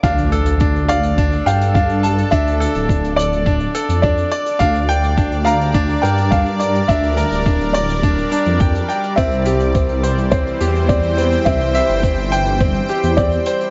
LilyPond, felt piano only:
\new Staff \with { instrumentName = "Felt piano" } { \time 4/4 \key d \minor \tempo 4 = 105 f''4. f''4 g''8 f''4 | e''4. d''4. d''4 | f''4. f''4 g''8 f''4 | e''4. d''2 r8 |
e''2 c''4 d''4 | e''2. d''4 | }